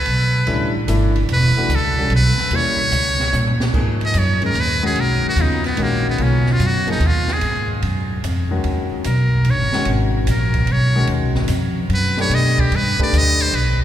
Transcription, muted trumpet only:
0.00 0.72 B4 medium
1.33 1.77 B4 medium
1.75 2.13 A4 medium
2.16 2.57 B4 loud
2.56 3.63 C#5 loud
4.06 4.20 D#5 medium
4.19 4.44 C#5 medium
4.46 4.62 A#4 loud
4.60 4.86 B4 loud
4.86 5.02 G#4 medium
5.01 5.26 A#4 medium
5.29 5.43 F#4 medium
5.41 5.66 D#4 medium
5.66 5.84 B3 medium
5.83 6.08 A#3 medium
6.10 6.24 B3 medium
6.23 6.54 C#4 medium
6.52 6.68 F4 medium
6.66 6.91 F#4 medium
6.92 7.08 D#4 medium
7.07 7.34 F4 medium
7.33 7.72 G#4 medium
9.07 9.52 A#4 medium
9.50 9.89 C#5 loud
10.31 10.73 A#4 medium
10.72 11.11 C#5 loud
11.94 12.18 B4 medium
12.21 12.36 C#5 loud
12.35 12.62 D#5 medium
12.60 12.77 G4 medium
12.76 13.02 B4 medium
13.03 13.19 D5 loud
13.18 13.43 D#5 loud
13.42 13.57 C5 loud
13.55 13.82 B4 medium

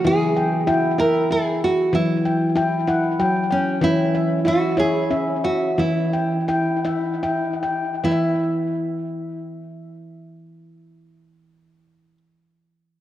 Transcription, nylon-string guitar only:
0.06 0.70 G#4 medium
0.70 0.96 F#4 medium
0.99 1.31 A#4 medium
1.32 1.63 G#4 medium
1.64 1.95 F#4 medium
1.95 3.16 E4 medium
3.52 3.83 C#4 medium
3.84 4.49 E4 medium
4.48 4.79 F#4 medium
4.80 5.44 G#4 medium
5.45 5.79 F#4 medium
5.79 7.20 E4 medium
8.05 12.17 E4 medium

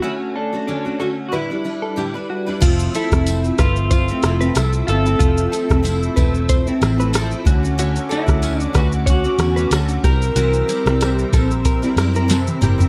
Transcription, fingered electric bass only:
2.61 2.87 F1 loud
3.12 3.49 F1 loud
3.58 4.10 G1 medium
4.23 4.49 F1 medium
4.56 4.81 C2 medium
4.88 5.14 G1 loud
5.20 5.46 F1 loud
5.70 6.08 F1 medium
6.17 6.69 E1 medium
6.82 7.33 A1 medium
7.46 7.97 D2 loud
8.28 8.66 D2 loud
8.74 9.26 D2 medium
9.39 9.65 E2 loud
9.71 9.97 D2 medium
10.03 10.29 C2 medium
10.36 10.62 C2 loud
10.86 11.23 C2 loud
11.32 11.84 A#1 medium
11.96 12.48 F#2 medium
12.61 12.87 F#1 loud

